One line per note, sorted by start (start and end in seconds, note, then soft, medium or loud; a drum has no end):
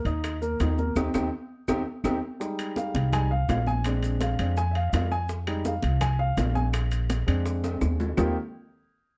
0.05 0.56 D#2 medium
0.05 0.36 D#4 medium
0.05 0.36 D#5 medium
0.05 high conga soft
0.05 high timbale medium
0.05 maracas soft
0.24 high bongo medium
0.24 high conga soft
0.24 high timbale medium
0.24 claves medium
0.24 maracas medium
0.42 0.57 A#3 medium
0.42 0.57 A#4 medium
0.42 high conga soft
0.42 maracas medium
0.60 0.94 D#2 medium
0.60 0.75 D#3 medium
0.60 0.75 D#4 medium
0.60 high bongo medium
0.60 low bongo medium
0.60 high conga medium
0.60 high timbale medium
0.60 low timbale medium
0.60 maracas medium
0.78 0.93 A#3 medium
0.78 0.93 A#4 medium
0.78 high conga medium
0.78 maracas soft
0.96 1.09 D#2 medium
0.96 1.08 C4 medium
0.96 1.08 D#4 medium
0.96 1.08 G4 medium
0.96 high bongo medium
0.96 high conga loud
0.96 high timbale medium
0.96 claves loud
0.96 maracas medium
1.14 1.28 D#2 medium
1.14 1.26 C4 medium
1.14 1.26 D#4 medium
1.14 1.26 G4 medium
1.14 high bongo medium
1.14 high conga medium
1.14 high timbale medium
1.14 claves loud
1.14 maracas loud
1.68 1.82 D#2 medium
1.68 1.80 C4 medium
1.68 1.80 D#4 medium
1.68 1.80 G4 medium
1.68 high bongo medium
1.68 high conga loud
1.68 high timbale loud
1.68 claves loud
1.68 maracas medium
2.04 2.18 D#2 medium
2.04 2.16 C4 medium
2.04 2.16 D#4 medium
2.04 2.16 G4 medium
2.04 high bongo medium
2.04 high conga medium
2.04 high timbale loud
2.04 claves medium
2.04 maracas loud
2.40 3.11 G3 medium
2.40 3.11 G#3 soft
2.40 3.12 D#4 medium
2.40 high bongo medium
2.40 high conga soft
2.40 maracas medium
2.59 high bongo soft
2.59 high conga soft
2.59 high timbale medium
2.59 maracas medium
2.76 3.10 F5 medium
2.76 high bongo medium
2.76 high conga medium
2.76 low timbale medium
2.76 maracas medium
2.94 3.45 C2 medium
2.94 high bongo soft
2.94 high conga medium
2.94 high timbale medium
2.94 maracas soft
3.13 3.29 G3 soft
3.13 3.29 G#3 soft
3.13 3.29 D#4 medium
3.13 3.31 G#5 medium
3.13 high bongo medium
3.13 high conga soft
3.13 low conga medium
3.13 high timbale medium
3.13 maracas medium
3.31 3.48 F5 medium
3.31 high bongo soft
3.31 high conga soft
3.49 4.33 A#1 loud
3.49 3.67 F5 medium
3.49 high bongo medium
3.49 low bongo medium
3.49 high conga medium
3.49 high timbale medium
3.49 low timbale medium
3.49 maracas medium
3.66 3.85 G#5 medium
3.66 high conga medium
3.66 maracas soft
3.84 4.37 G#3 medium
3.84 4.37 C4 soft
3.84 4.37 D4 medium
3.84 high bongo medium
3.84 high conga soft
3.84 high timbale medium
3.84 maracas medium
4.03 high bongo soft
4.03 high conga soft
4.03 high timbale medium
4.03 maracas medium
4.21 4.55 F5 medium
4.21 high bongo medium
4.21 high conga medium
4.21 high timbale medium
4.21 low timbale medium
4.21 maracas medium
4.39 4.89 F2 medium
4.39 4.55 G#3 soft
4.39 4.56 C4 soft
4.39 4.56 D4 medium
4.39 high bongo soft
4.39 high timbale medium
4.39 maracas soft
4.57 4.75 G#5 loud
4.57 high bongo medium
4.57 high conga soft
4.57 maracas medium
4.71 4.74 E5 medium
4.71 high timbale medium
4.76 4.93 F5 medium
4.76 high bongo soft
4.76 high conga soft
4.90 5.77 F2 medium
4.90 4.92 E5 medium
4.90 maracas medium
4.94 5.11 F5 medium
4.94 high bongo medium
4.94 low bongo medium
4.94 high conga medium
4.94 high timbale loud
4.94 low timbale medium
5.11 5.29 G#5 loud
5.11 high conga soft
5.11 maracas soft
5.29 high bongo medium
5.29 high conga soft
5.29 maracas medium
5.47 5.71 G3 medium
5.47 5.71 G#3 soft
5.47 5.72 D#4 medium
5.47 high bongo soft
5.47 high conga soft
5.47 high timbale loud
5.47 claves medium
5.65 5.99 F5 medium
5.65 high bongo medium
5.65 high conga medium
5.65 low timbale medium
5.65 maracas medium
5.83 6.34 C2 loud
5.83 high bongo soft
5.83 high conga medium
5.83 high timbale medium
5.83 maracas soft
6.01 6.19 G#5 medium
6.01 high bongo medium
6.01 high conga soft
6.01 low conga medium
6.01 high timbale loud
6.01 claves medium
6.01 maracas medium
6.19 6.36 F5 medium
6.19 high bongo soft
6.19 high conga soft
6.37 7.22 A#1 medium
6.37 high bongo medium
6.37 low bongo medium
6.37 high conga medium
6.37 high timbale medium
6.37 low timbale medium
6.37 maracas medium
6.55 6.66 G#5 medium
6.55 high conga medium
6.55 maracas soft
6.73 high bongo medium
6.73 high conga soft
6.73 high timbale medium
6.73 claves medium
6.73 maracas medium
6.91 high bongo soft
6.91 high conga soft
6.91 high timbale medium
6.91 maracas medium
7.09 high bongo medium
7.09 high conga medium
7.09 high timbale medium
7.09 low timbale medium
7.09 maracas medium
7.27 7.78 F2 loud
7.27 8.13 G#3 medium
7.27 8.13 C4 medium
7.27 8.14 D4 medium
7.27 high bongo soft
7.27 high timbale medium
7.27 claves medium
7.27 maracas soft
7.46 high bongo medium
7.46 high conga soft
7.46 maracas medium
7.64 high bongo soft
7.64 high conga soft
7.64 high timbale medium
7.64 maracas medium
7.81 8.13 D#2 medium
7.81 high bongo medium
7.81 low bongo medium
7.81 high conga medium
7.81 claves medium
7.81 maracas medium
8.00 high conga soft
8.00 low timbale medium
8.00 maracas soft
8.17 8.35 D#2 medium
8.17 8.34 D#3 medium
8.17 8.34 A#3 medium
8.17 8.34 C4 medium
8.17 8.35 D#4 medium
8.17 8.35 F4 medium
8.17 8.35 G4 medium
8.17 low bongo medium
8.17 low conga loud
8.17 low timbale medium
8.17 claves loud
8.17 maracas loud